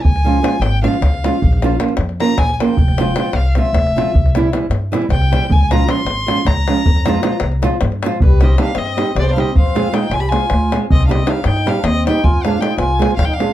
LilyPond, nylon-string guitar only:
\new Staff \with { instrumentName = "Nylon-string guitar" } { \time 7/8 \key f \minor \tempo 4 = 156 r8 <f aes des' f'>8 <f aes des' f'>8 r8 <f aes des' f'>8 r8 <f aes des' f'>8 | r8 <f bes des' f'>8 <f bes des' f'>8 r8 <f bes des' f'>8 r8 <f bes des' f'>8 | r8 <f aes c' f'>8 <f aes c' f'>8 r8 <f aes c' f'>8 r8 <f aes c' f'>8 | r8 <e g c' e'>8 <e g c' e'>8 r8 <e g c' e'>8 r8 <e g c' e'>8 |
r8 <f aes des' f'>8 <f aes des' f'>8 r8 <f aes des' f'>8 r8 <f aes des' f'>8 | r8 <f aes c' f'>8 <f aes c' f'>8 r8 <f aes c' f'>8 r8 <f aes c' f'>8 | \key c \minor r8 <g c' ees' g'>8 <g c' ees' g'>8 r8 <g c' ees' g'>8 r8 <g c' ees' g'>8 | r8 <aes c' f' aes'>8 <aes c' f' aes'>8 r8 <aes c' f' aes'>8 r8 <aes c' f' aes'>8 |
r8 <g c' ees' g'>8 <g c' ees' g'>8 r8 <g c' ees' g'>8 r8 <g c' ees' g'>8 | r8 <aes c' f' aes'>8 <aes c' f' aes'>8 r8 <aes c' f' aes'>8 r8 <aes c' f' aes'>8 | }